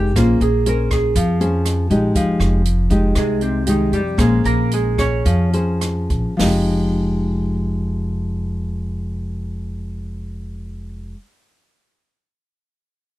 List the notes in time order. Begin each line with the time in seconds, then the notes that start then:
Already playing: F1 C3 G#3 D#4 G4
0.16 A#1 A#3 C#4 F4 G#4 C5, kick, cross-stick, closed hi-hat
0.41 A#1 G#4, closed hi-hat
0.66 C#4 G#4 A#4 C5, closed hi-hat
0.91 G#4, kick, cross-stick, closed hi-hat
1.15 F2 F3, kick, closed hi-hat
1.40 C#4 G#4 C5, closed hi-hat
1.65 cross-stick, closed hi-hat
1.90 A#1 G#3 D#4 G4, closed hi-hat
2.15 F1 F3, kick, closed hi-hat
2.40 F1, cross-stick, closed hi-hat
2.65 closed hi-hat
2.90 G#3 D#4 G4, kick, closed hi-hat
3.15 C2 C3 G#3 G#4, kick, cross-stick, closed hi-hat
3.41 C3 C4, closed hi-hat
3.66 D#3 G#3 D#4 G4, closed hi-hat
3.92 F2 G3 G4, closed hi-hat
4.18 A#1 G#3 A#3 C#4 G#4 C5, kick, cross-stick, closed hi-hat
4.44 A#1 A#3 A#4, closed hi-hat
4.71 G#3 G#4, closed hi-hat
4.98 C#4 G#4 C#5, kick, cross-stick, closed hi-hat
5.25 F2 F3, kick, closed hi-hat
5.53 C#4 G#4 C5, closed hi-hat
5.81 cross-stick, closed hi-hat
6.10 A#1, kick, closed hi-hat
6.37 F1 F3 G#3 D#4, snare, open hi-hat
6.43 G4